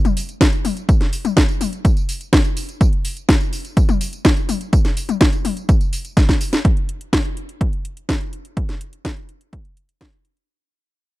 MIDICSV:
0, 0, Header, 1, 2, 480
1, 0, Start_track
1, 0, Tempo, 480000
1, 888, Time_signature, 4, 2, 24, 8
1, 11200, End_track
2, 0, Start_track
2, 0, Title_t, "Drums"
2, 49, Note_on_c, 9, 42, 25
2, 49, Note_on_c, 9, 48, 83
2, 49, Note_on_c, 9, 54, 28
2, 149, Note_off_c, 9, 42, 0
2, 149, Note_off_c, 9, 48, 0
2, 149, Note_off_c, 9, 54, 0
2, 168, Note_on_c, 9, 46, 98
2, 168, Note_on_c, 9, 54, 69
2, 268, Note_off_c, 9, 46, 0
2, 268, Note_off_c, 9, 54, 0
2, 288, Note_on_c, 9, 42, 53
2, 288, Note_on_c, 9, 54, 31
2, 388, Note_off_c, 9, 42, 0
2, 388, Note_off_c, 9, 54, 0
2, 408, Note_on_c, 9, 36, 119
2, 408, Note_on_c, 9, 38, 120
2, 408, Note_on_c, 9, 42, 50
2, 408, Note_on_c, 9, 54, 39
2, 508, Note_off_c, 9, 36, 0
2, 508, Note_off_c, 9, 38, 0
2, 508, Note_off_c, 9, 42, 0
2, 508, Note_off_c, 9, 54, 0
2, 527, Note_on_c, 9, 42, 26
2, 527, Note_on_c, 9, 54, 28
2, 627, Note_off_c, 9, 42, 0
2, 627, Note_off_c, 9, 54, 0
2, 647, Note_on_c, 9, 46, 89
2, 647, Note_on_c, 9, 48, 84
2, 647, Note_on_c, 9, 54, 72
2, 747, Note_off_c, 9, 46, 0
2, 747, Note_off_c, 9, 48, 0
2, 747, Note_off_c, 9, 54, 0
2, 768, Note_on_c, 9, 42, 50
2, 768, Note_on_c, 9, 54, 30
2, 867, Note_off_c, 9, 42, 0
2, 867, Note_off_c, 9, 54, 0
2, 887, Note_on_c, 9, 42, 51
2, 887, Note_on_c, 9, 54, 41
2, 888, Note_on_c, 9, 36, 120
2, 987, Note_off_c, 9, 42, 0
2, 987, Note_off_c, 9, 54, 0
2, 988, Note_off_c, 9, 36, 0
2, 1007, Note_on_c, 9, 38, 37
2, 1007, Note_on_c, 9, 42, 26
2, 1107, Note_off_c, 9, 38, 0
2, 1107, Note_off_c, 9, 42, 0
2, 1127, Note_on_c, 9, 46, 107
2, 1127, Note_on_c, 9, 54, 73
2, 1227, Note_off_c, 9, 46, 0
2, 1227, Note_off_c, 9, 54, 0
2, 1248, Note_on_c, 9, 42, 50
2, 1248, Note_on_c, 9, 48, 84
2, 1248, Note_on_c, 9, 54, 33
2, 1348, Note_off_c, 9, 42, 0
2, 1348, Note_off_c, 9, 48, 0
2, 1348, Note_off_c, 9, 54, 0
2, 1367, Note_on_c, 9, 38, 115
2, 1367, Note_on_c, 9, 42, 51
2, 1367, Note_on_c, 9, 54, 42
2, 1368, Note_on_c, 9, 36, 118
2, 1467, Note_off_c, 9, 38, 0
2, 1467, Note_off_c, 9, 42, 0
2, 1467, Note_off_c, 9, 54, 0
2, 1468, Note_off_c, 9, 36, 0
2, 1487, Note_on_c, 9, 42, 26
2, 1487, Note_on_c, 9, 54, 30
2, 1587, Note_off_c, 9, 42, 0
2, 1587, Note_off_c, 9, 54, 0
2, 1608, Note_on_c, 9, 46, 94
2, 1608, Note_on_c, 9, 48, 84
2, 1608, Note_on_c, 9, 54, 73
2, 1708, Note_off_c, 9, 46, 0
2, 1708, Note_off_c, 9, 48, 0
2, 1708, Note_off_c, 9, 54, 0
2, 1728, Note_on_c, 9, 42, 50
2, 1728, Note_on_c, 9, 54, 30
2, 1828, Note_off_c, 9, 42, 0
2, 1828, Note_off_c, 9, 54, 0
2, 1848, Note_on_c, 9, 36, 115
2, 1848, Note_on_c, 9, 42, 55
2, 1848, Note_on_c, 9, 54, 43
2, 1948, Note_off_c, 9, 36, 0
2, 1948, Note_off_c, 9, 42, 0
2, 1948, Note_off_c, 9, 54, 0
2, 1968, Note_on_c, 9, 42, 26
2, 1968, Note_on_c, 9, 54, 29
2, 2068, Note_off_c, 9, 42, 0
2, 2068, Note_off_c, 9, 54, 0
2, 2088, Note_on_c, 9, 46, 102
2, 2088, Note_on_c, 9, 54, 70
2, 2188, Note_off_c, 9, 46, 0
2, 2188, Note_off_c, 9, 54, 0
2, 2208, Note_on_c, 9, 42, 54
2, 2208, Note_on_c, 9, 54, 34
2, 2308, Note_off_c, 9, 42, 0
2, 2308, Note_off_c, 9, 54, 0
2, 2328, Note_on_c, 9, 36, 123
2, 2328, Note_on_c, 9, 38, 120
2, 2328, Note_on_c, 9, 42, 52
2, 2328, Note_on_c, 9, 54, 42
2, 2428, Note_off_c, 9, 36, 0
2, 2428, Note_off_c, 9, 38, 0
2, 2428, Note_off_c, 9, 42, 0
2, 2428, Note_off_c, 9, 54, 0
2, 2447, Note_on_c, 9, 42, 26
2, 2447, Note_on_c, 9, 54, 30
2, 2547, Note_off_c, 9, 42, 0
2, 2547, Note_off_c, 9, 54, 0
2, 2567, Note_on_c, 9, 46, 96
2, 2567, Note_on_c, 9, 54, 75
2, 2667, Note_off_c, 9, 46, 0
2, 2667, Note_off_c, 9, 54, 0
2, 2687, Note_on_c, 9, 42, 52
2, 2687, Note_on_c, 9, 54, 32
2, 2787, Note_off_c, 9, 42, 0
2, 2787, Note_off_c, 9, 54, 0
2, 2808, Note_on_c, 9, 36, 117
2, 2808, Note_on_c, 9, 42, 52
2, 2808, Note_on_c, 9, 54, 42
2, 2908, Note_off_c, 9, 36, 0
2, 2908, Note_off_c, 9, 42, 0
2, 2908, Note_off_c, 9, 54, 0
2, 2927, Note_on_c, 9, 42, 26
2, 3027, Note_off_c, 9, 42, 0
2, 3047, Note_on_c, 9, 46, 110
2, 3047, Note_on_c, 9, 54, 73
2, 3147, Note_off_c, 9, 46, 0
2, 3147, Note_off_c, 9, 54, 0
2, 3167, Note_on_c, 9, 42, 52
2, 3167, Note_on_c, 9, 54, 32
2, 3267, Note_off_c, 9, 42, 0
2, 3267, Note_off_c, 9, 54, 0
2, 3286, Note_on_c, 9, 38, 118
2, 3286, Note_on_c, 9, 42, 51
2, 3286, Note_on_c, 9, 54, 43
2, 3288, Note_on_c, 9, 36, 119
2, 3387, Note_off_c, 9, 38, 0
2, 3387, Note_off_c, 9, 42, 0
2, 3387, Note_off_c, 9, 54, 0
2, 3388, Note_off_c, 9, 36, 0
2, 3407, Note_on_c, 9, 42, 26
2, 3407, Note_on_c, 9, 54, 30
2, 3507, Note_off_c, 9, 42, 0
2, 3507, Note_off_c, 9, 54, 0
2, 3527, Note_on_c, 9, 46, 96
2, 3527, Note_on_c, 9, 54, 74
2, 3627, Note_off_c, 9, 46, 0
2, 3627, Note_off_c, 9, 54, 0
2, 3647, Note_on_c, 9, 42, 54
2, 3647, Note_on_c, 9, 54, 32
2, 3747, Note_off_c, 9, 42, 0
2, 3747, Note_off_c, 9, 54, 0
2, 3768, Note_on_c, 9, 36, 114
2, 3768, Note_on_c, 9, 42, 55
2, 3768, Note_on_c, 9, 54, 44
2, 3868, Note_off_c, 9, 36, 0
2, 3868, Note_off_c, 9, 42, 0
2, 3868, Note_off_c, 9, 54, 0
2, 3888, Note_on_c, 9, 42, 26
2, 3888, Note_on_c, 9, 48, 85
2, 3888, Note_on_c, 9, 54, 29
2, 3988, Note_off_c, 9, 42, 0
2, 3988, Note_off_c, 9, 48, 0
2, 3988, Note_off_c, 9, 54, 0
2, 4008, Note_on_c, 9, 46, 105
2, 4008, Note_on_c, 9, 54, 72
2, 4108, Note_off_c, 9, 46, 0
2, 4108, Note_off_c, 9, 54, 0
2, 4128, Note_on_c, 9, 42, 55
2, 4128, Note_on_c, 9, 54, 33
2, 4228, Note_off_c, 9, 42, 0
2, 4228, Note_off_c, 9, 54, 0
2, 4248, Note_on_c, 9, 38, 112
2, 4248, Note_on_c, 9, 42, 53
2, 4248, Note_on_c, 9, 54, 42
2, 4249, Note_on_c, 9, 36, 112
2, 4347, Note_off_c, 9, 38, 0
2, 4347, Note_off_c, 9, 42, 0
2, 4347, Note_off_c, 9, 54, 0
2, 4349, Note_off_c, 9, 36, 0
2, 4369, Note_on_c, 9, 42, 27
2, 4369, Note_on_c, 9, 54, 30
2, 4469, Note_off_c, 9, 42, 0
2, 4469, Note_off_c, 9, 54, 0
2, 4488, Note_on_c, 9, 46, 99
2, 4488, Note_on_c, 9, 48, 84
2, 4488, Note_on_c, 9, 54, 76
2, 4588, Note_off_c, 9, 46, 0
2, 4588, Note_off_c, 9, 48, 0
2, 4588, Note_off_c, 9, 54, 0
2, 4608, Note_on_c, 9, 42, 52
2, 4608, Note_on_c, 9, 54, 31
2, 4708, Note_off_c, 9, 42, 0
2, 4708, Note_off_c, 9, 54, 0
2, 4728, Note_on_c, 9, 42, 55
2, 4728, Note_on_c, 9, 54, 42
2, 4729, Note_on_c, 9, 36, 116
2, 4828, Note_off_c, 9, 42, 0
2, 4828, Note_off_c, 9, 54, 0
2, 4829, Note_off_c, 9, 36, 0
2, 4848, Note_on_c, 9, 38, 37
2, 4848, Note_on_c, 9, 42, 28
2, 4848, Note_on_c, 9, 54, 29
2, 4948, Note_off_c, 9, 38, 0
2, 4948, Note_off_c, 9, 42, 0
2, 4948, Note_off_c, 9, 54, 0
2, 4968, Note_on_c, 9, 46, 113
2, 4968, Note_on_c, 9, 54, 76
2, 5068, Note_off_c, 9, 46, 0
2, 5068, Note_off_c, 9, 54, 0
2, 5088, Note_on_c, 9, 42, 53
2, 5088, Note_on_c, 9, 48, 79
2, 5088, Note_on_c, 9, 54, 32
2, 5188, Note_off_c, 9, 42, 0
2, 5188, Note_off_c, 9, 48, 0
2, 5188, Note_off_c, 9, 54, 0
2, 5207, Note_on_c, 9, 38, 114
2, 5207, Note_on_c, 9, 42, 54
2, 5207, Note_on_c, 9, 54, 43
2, 5209, Note_on_c, 9, 36, 116
2, 5307, Note_off_c, 9, 38, 0
2, 5307, Note_off_c, 9, 42, 0
2, 5307, Note_off_c, 9, 54, 0
2, 5309, Note_off_c, 9, 36, 0
2, 5328, Note_on_c, 9, 42, 27
2, 5328, Note_on_c, 9, 54, 29
2, 5428, Note_off_c, 9, 42, 0
2, 5428, Note_off_c, 9, 54, 0
2, 5448, Note_on_c, 9, 46, 100
2, 5448, Note_on_c, 9, 48, 82
2, 5448, Note_on_c, 9, 54, 75
2, 5548, Note_off_c, 9, 46, 0
2, 5548, Note_off_c, 9, 48, 0
2, 5548, Note_off_c, 9, 54, 0
2, 5568, Note_on_c, 9, 42, 53
2, 5568, Note_on_c, 9, 54, 32
2, 5668, Note_off_c, 9, 42, 0
2, 5668, Note_off_c, 9, 54, 0
2, 5688, Note_on_c, 9, 36, 120
2, 5688, Note_on_c, 9, 42, 57
2, 5688, Note_on_c, 9, 54, 42
2, 5788, Note_off_c, 9, 36, 0
2, 5788, Note_off_c, 9, 42, 0
2, 5788, Note_off_c, 9, 54, 0
2, 5807, Note_on_c, 9, 42, 28
2, 5807, Note_on_c, 9, 54, 30
2, 5907, Note_off_c, 9, 42, 0
2, 5907, Note_off_c, 9, 54, 0
2, 5927, Note_on_c, 9, 46, 107
2, 5927, Note_on_c, 9, 54, 68
2, 6027, Note_off_c, 9, 46, 0
2, 6027, Note_off_c, 9, 54, 0
2, 6047, Note_on_c, 9, 42, 57
2, 6047, Note_on_c, 9, 54, 33
2, 6147, Note_off_c, 9, 42, 0
2, 6147, Note_off_c, 9, 54, 0
2, 6168, Note_on_c, 9, 38, 61
2, 6168, Note_on_c, 9, 42, 55
2, 6168, Note_on_c, 9, 54, 42
2, 6169, Note_on_c, 9, 36, 118
2, 6268, Note_off_c, 9, 38, 0
2, 6268, Note_off_c, 9, 42, 0
2, 6268, Note_off_c, 9, 54, 0
2, 6269, Note_off_c, 9, 36, 0
2, 6288, Note_on_c, 9, 36, 60
2, 6288, Note_on_c, 9, 38, 65
2, 6288, Note_on_c, 9, 42, 29
2, 6288, Note_on_c, 9, 54, 30
2, 6388, Note_off_c, 9, 36, 0
2, 6388, Note_off_c, 9, 38, 0
2, 6388, Note_off_c, 9, 42, 0
2, 6388, Note_off_c, 9, 54, 0
2, 6408, Note_on_c, 9, 46, 98
2, 6408, Note_on_c, 9, 54, 74
2, 6508, Note_off_c, 9, 46, 0
2, 6508, Note_off_c, 9, 54, 0
2, 6529, Note_on_c, 9, 38, 86
2, 6529, Note_on_c, 9, 42, 54
2, 6529, Note_on_c, 9, 54, 32
2, 6629, Note_off_c, 9, 38, 0
2, 6629, Note_off_c, 9, 42, 0
2, 6629, Note_off_c, 9, 54, 0
2, 6648, Note_on_c, 9, 36, 118
2, 6649, Note_on_c, 9, 42, 55
2, 6748, Note_off_c, 9, 36, 0
2, 6749, Note_off_c, 9, 42, 0
2, 6769, Note_on_c, 9, 42, 27
2, 6869, Note_off_c, 9, 42, 0
2, 6889, Note_on_c, 9, 42, 93
2, 6989, Note_off_c, 9, 42, 0
2, 7009, Note_on_c, 9, 42, 53
2, 7109, Note_off_c, 9, 42, 0
2, 7129, Note_on_c, 9, 36, 115
2, 7130, Note_on_c, 9, 38, 118
2, 7130, Note_on_c, 9, 42, 53
2, 7229, Note_off_c, 9, 36, 0
2, 7230, Note_off_c, 9, 38, 0
2, 7230, Note_off_c, 9, 42, 0
2, 7250, Note_on_c, 9, 42, 27
2, 7350, Note_off_c, 9, 42, 0
2, 7370, Note_on_c, 9, 42, 91
2, 7470, Note_off_c, 9, 42, 0
2, 7490, Note_on_c, 9, 42, 52
2, 7590, Note_off_c, 9, 42, 0
2, 7609, Note_on_c, 9, 36, 118
2, 7610, Note_on_c, 9, 42, 55
2, 7709, Note_off_c, 9, 36, 0
2, 7710, Note_off_c, 9, 42, 0
2, 7730, Note_on_c, 9, 42, 27
2, 7830, Note_off_c, 9, 42, 0
2, 7849, Note_on_c, 9, 42, 85
2, 7949, Note_off_c, 9, 42, 0
2, 7970, Note_on_c, 9, 42, 53
2, 8070, Note_off_c, 9, 42, 0
2, 8089, Note_on_c, 9, 36, 114
2, 8089, Note_on_c, 9, 38, 113
2, 8089, Note_on_c, 9, 42, 52
2, 8189, Note_off_c, 9, 36, 0
2, 8189, Note_off_c, 9, 38, 0
2, 8189, Note_off_c, 9, 42, 0
2, 8209, Note_on_c, 9, 42, 27
2, 8309, Note_off_c, 9, 42, 0
2, 8329, Note_on_c, 9, 42, 89
2, 8429, Note_off_c, 9, 42, 0
2, 8449, Note_on_c, 9, 42, 52
2, 8549, Note_off_c, 9, 42, 0
2, 8568, Note_on_c, 9, 36, 114
2, 8569, Note_on_c, 9, 42, 52
2, 8668, Note_off_c, 9, 36, 0
2, 8669, Note_off_c, 9, 42, 0
2, 8689, Note_on_c, 9, 38, 35
2, 8689, Note_on_c, 9, 42, 25
2, 8789, Note_off_c, 9, 38, 0
2, 8789, Note_off_c, 9, 42, 0
2, 8809, Note_on_c, 9, 42, 91
2, 8909, Note_off_c, 9, 42, 0
2, 8929, Note_on_c, 9, 42, 50
2, 9029, Note_off_c, 9, 42, 0
2, 9048, Note_on_c, 9, 38, 116
2, 9048, Note_on_c, 9, 42, 52
2, 9049, Note_on_c, 9, 36, 116
2, 9148, Note_off_c, 9, 38, 0
2, 9148, Note_off_c, 9, 42, 0
2, 9149, Note_off_c, 9, 36, 0
2, 9168, Note_on_c, 9, 42, 26
2, 9268, Note_off_c, 9, 42, 0
2, 9288, Note_on_c, 9, 42, 90
2, 9388, Note_off_c, 9, 42, 0
2, 9409, Note_on_c, 9, 42, 50
2, 9509, Note_off_c, 9, 42, 0
2, 9529, Note_on_c, 9, 36, 113
2, 9529, Note_on_c, 9, 42, 52
2, 9629, Note_off_c, 9, 36, 0
2, 9629, Note_off_c, 9, 42, 0
2, 9649, Note_on_c, 9, 42, 25
2, 9749, Note_off_c, 9, 42, 0
2, 9769, Note_on_c, 9, 42, 84
2, 9869, Note_off_c, 9, 42, 0
2, 9889, Note_on_c, 9, 42, 53
2, 9989, Note_off_c, 9, 42, 0
2, 10009, Note_on_c, 9, 36, 112
2, 10009, Note_on_c, 9, 38, 113
2, 10009, Note_on_c, 9, 42, 50
2, 10109, Note_off_c, 9, 36, 0
2, 10109, Note_off_c, 9, 38, 0
2, 10109, Note_off_c, 9, 42, 0
2, 10129, Note_on_c, 9, 42, 25
2, 10229, Note_off_c, 9, 42, 0
2, 10248, Note_on_c, 9, 42, 87
2, 10348, Note_off_c, 9, 42, 0
2, 10369, Note_on_c, 9, 42, 50
2, 10469, Note_off_c, 9, 42, 0
2, 11200, End_track
0, 0, End_of_file